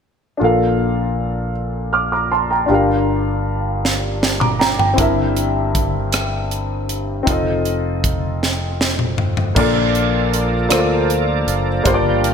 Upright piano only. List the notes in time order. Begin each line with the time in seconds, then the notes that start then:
0.37 A#2 D4 F4 A4
0.43 A#4 F5
1.93 D6 F6
2.12 A#5 D6
2.31 A5 C6
2.51 G5 A#5
2.66 G2 D4 F4
2.70 G4 A#4 F5
4.40 A#5 D6
4.59 G5 A#5
4.79 G5
4.94 G2 C4 E4
4.98 G4 A#4 E5
7.23 C4 D#4
7.27 F4 A4 D#5
9.55 A#2 A#3 D4 F4 A4 D5
10.69 A#3 D4 F4 A4 C5
10.79 D5
11.83 G2 A#3 D4 F4 G4 C5
11.94 D5